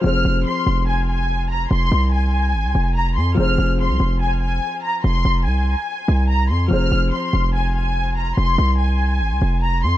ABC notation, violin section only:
X:1
M:4/4
L:1/8
Q:1/4=144
K:Fm
V:1 name="Violin section"
f'2 c'2 a a2 b | c'2 a4 b c' | f'2 c'2 a a2 b | c'2 a4 b c' |
f'2 c'2 a a2 b | c'2 a4 b c' |]